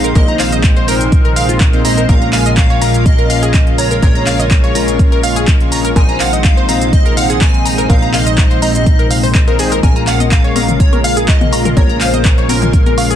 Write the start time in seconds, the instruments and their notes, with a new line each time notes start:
Already playing: analog synth bass A#1, analog polysynth A#2 G#3 C4 D#4 C5, analog synth pad C3 D#3 G#3 D#4, digital synth lead F5
0.04 synth arpeggio sound A#4, closed hi-hat, shaker
0.15 analog synth bass A#1, analog polysynth A#2 G#3 C4 D#4 C5, synth arpeggio sound A#4, digital synth lead D#5, kick, closed hi-hat, shaker
0.28 synth arpeggio sound A#5, closed hi-hat
0.40 digital synth lead C5, synth arpeggio sound F5, clap, open hi-hat, shaker
0.52 synth arpeggio sound D#5, closed hi-hat, shaker
0.64 kick, clap, closed hi-hat, shaker
0.76 synth arpeggio sound C5, closed hi-hat
0.88 analog polysynth A#2 G#3 C4 D#4 C5, digital synth lead A#4, synth arpeggio sound A#5, open hi-hat, shaker
1.01 closed hi-hat, shaker
1.12 kick, closed hi-hat, shaker
1.25 synth arpeggio sound A#4, closed hi-hat
1.36 synth arpeggio sound F5, open hi-hat, shaker
1.49 synth arpeggio sound F4, closed hi-hat, shaker
1.60 kick, clap, closed hi-hat, shaker
1.73 analog polysynth A#2 G#3 C4 D#4 C5, closed hi-hat
1.85 analog polysynth A#2 G#3 C4 D#4 C5, digital synth lead D#5, synth arpeggio sound A#5, open hi-hat, shaker
1.97 synth arpeggio sound A#4, closed hi-hat, shaker
2.09 analog synth bass A#1, analog polysynth A#2 G#3 C#4 F4 A#4, analog synth pad C#3 A#3 F4, synth arpeggio sound A#4, digital synth lead F5, kick, closed hi-hat, shaker
2.22 synth arpeggio sound A#5, closed hi-hat
2.33 synth arpeggio sound F5, digital synth lead G#5, clap, open hi-hat, shaker
2.46 synth arpeggio sound D#5, closed hi-hat, shaker
2.57 digital synth lead F5, kick, clap, closed hi-hat, shaker
2.70 synth arpeggio sound C#5, closed hi-hat
2.81 analog polysynth A#2 G#3 C#4 F4 A#4, digital synth lead F5, synth arpeggio sound A#5, open hi-hat, shaker
2.94 closed hi-hat, shaker
3.06 digital synth lead D#5, kick, closed hi-hat, shaker
3.18 synth arpeggio sound A#4, closed hi-hat
3.30 synth arpeggio sound F5, open hi-hat, shaker
3.43 synth arpeggio sound G#4, closed hi-hat, shaker
3.54 kick, clap, closed hi-hat, shaker
3.67 closed hi-hat
3.78 digital synth lead C#5, synth arpeggio sound A#5, open hi-hat, shaker
3.91 synth arpeggio sound A#4, closed hi-hat, shaker
4.02 analog synth bass A#1, analog polysynth A#2 G#3 C#4 F4 A#4, synth arpeggio sound A#4, analog synth pad C#5, digital synth lead C#5, kick, closed hi-hat, shaker
4.15 synth arpeggio sound A#5, closed hi-hat
4.27 synth arpeggio sound F5, clap, open hi-hat, shaker
4.39 synth arpeggio sound D#5, closed hi-hat, shaker
4.51 kick, clap, closed hi-hat, shaker
4.64 synth arpeggio sound C#5, closed hi-hat
4.75 analog polysynth A#2 G#3 C#4 F4 A#4, synth arpeggio sound A#5, open hi-hat, shaker
4.88 closed hi-hat, shaker
4.99 kick, closed hi-hat, shaker
5.12 synth arpeggio sound A#4, closed hi-hat
5.23 synth arpeggio sound F5, open hi-hat, shaker
5.36 synth arpeggio sound G#4, closed hi-hat, shaker
5.48 kick, clap, closed hi-hat, shaker
5.60 closed hi-hat
5.72 synth arpeggio sound A#5, open hi-hat, shaker
5.85 synth arpeggio sound A#4, closed hi-hat, shaker
5.96 analog synth bass A#1, analog polysynth A#2 G#3 C4 D#4 C5, analog synth pad C3 D#3 G#3 D#4, synth arpeggio sound A#4, digital synth lead G#5, kick, closed hi-hat, shaker
6.09 synth arpeggio sound A#5, closed hi-hat
6.20 synth arpeggio sound F5, digital synth lead F#5, clap, open hi-hat, shaker
6.33 synth arpeggio sound D#5, closed hi-hat, shaker
6.44 digital synth lead F5, kick, clap, closed hi-hat, shaker
6.57 synth arpeggio sound C5, closed hi-hat
6.69 analog polysynth A#2 G#3 C4 D#4 C5, digital synth lead F5, synth arpeggio sound A#5, open hi-hat, shaker
6.81 closed hi-hat, shaker
6.93 digital synth lead D#5, kick, closed hi-hat, shaker
7.06 synth arpeggio sound A#4, closed hi-hat
7.17 synth arpeggio sound F5, digital synth lead F#5, open hi-hat, shaker
7.30 synth arpeggio sound G#4, closed hi-hat, shaker
7.41 digital synth lead G#5, kick, clap, closed hi-hat, shaker
7.54 closed hi-hat
7.65 synth arpeggio sound A#5, open hi-hat, shaker
7.78 synth arpeggio sound A#4, closed hi-hat, shaker
7.89 analog synth bass A#1, analog polysynth A#2 G#3 C4 D#4 C5, synth arpeggio sound A#4, digital synth lead F5, kick, closed hi-hat, shaker
8.02 synth arpeggio sound A#5, closed hi-hat
8.14 digital synth lead D#5, synth arpeggio sound F5, clap, open hi-hat, shaker
8.27 synth arpeggio sound D#5, closed hi-hat, shaker
8.38 kick, clap, closed hi-hat, shaker
8.51 synth arpeggio sound C5, closed hi-hat
8.62 analog polysynth A#2 G#3 C4 D#4 C5, digital synth lead D#5, synth arpeggio sound A#5, open hi-hat, shaker
8.75 closed hi-hat, shaker
8.86 kick, closed hi-hat, shaker
8.99 synth arpeggio sound A#4, closed hi-hat
9.11 synth arpeggio sound F5, open hi-hat, shaker
9.23 synth arpeggio sound C5, open hi-hat, shaker
9.35 synth arpeggio sound C5, kick, clap, closed hi-hat, shaker
9.48 analog polysynth A#2 G#3 C4 D#4 C5, synth arpeggio sound A#4, closed hi-hat
9.59 analog polysynth A#2 G#3 C4 D#4 C5, synth arpeggio sound G#4, open hi-hat, shaker
9.72 synth arpeggio sound A#4, closed hi-hat, shaker
9.83 analog synth bass A#1, analog synth pad C#3 G#3 A#3 F4, analog polysynth G#3 C#4 F4 A#4, synth arpeggio sound A#4, digital synth lead G#5, kick, closed hi-hat, high conga, shaker
9.96 synth arpeggio sound A#5, closed hi-hat
10.07 synth arpeggio sound F5, digital synth lead F#5, clap, open hi-hat, shaker
10.20 synth arpeggio sound D#5, closed hi-hat, high conga, shaker
10.32 digital synth lead F5, kick, clap, closed hi-hat, shaker
10.44 synth arpeggio sound C#5, closed hi-hat
10.56 analog polysynth A#2 G#3 C#4 F4 A#4, digital synth lead F5, synth arpeggio sound A#5, open hi-hat, high conga, high woodblock, shaker
10.69 closed hi-hat, mid tom, shaker
10.80 digital synth lead C#5, kick, closed hi-hat, shaker
10.93 synth arpeggio sound A#4, closed hi-hat, high conga, high woodblock
11.04 synth arpeggio sound F5, digital synth lead F5, open hi-hat, shaker
11.17 synth arpeggio sound G#4, closed hi-hat, shaker
11.28 digital synth lead D#5, kick, clap, closed hi-hat, shaker
11.41 closed hi-hat, mid tom, high conga
11.53 synth arpeggio sound A#5, open hi-hat, high woodblock, shaker
11.65 synth arpeggio sound A#4, closed hi-hat, mid tom, shaker
11.77 analog synth bass A#1, analog polysynth A#2 G#3 C#4 F4 A#4, synth arpeggio sound A#4, digital synth lead C#5, kick, closed hi-hat, high conga, shaker
11.89 synth arpeggio sound A#5, closed hi-hat
12.01 digital synth lead C5, synth arpeggio sound F5, clap, open hi-hat, shaker
12.14 synth arpeggio sound D#5, closed hi-hat, high conga, shaker
12.25 kick, clap, closed hi-hat, shaker
12.38 synth arpeggio sound C#5, closed hi-hat
12.49 analog polysynth A#2 G#3 C#4 F4 A#4, digital synth lead A#4, synth arpeggio sound A#5, open hi-hat, high conga, shaker
12.62 closed hi-hat, mid tom, shaker
12.73 kick, closed hi-hat, shaker
12.86 synth arpeggio sound A#4, closed hi-hat, high conga
12.98 synth arpeggio sound F5, open hi-hat, high woodblock, shaker
13.10 synth arpeggio sound G#4, closed hi-hat, shaker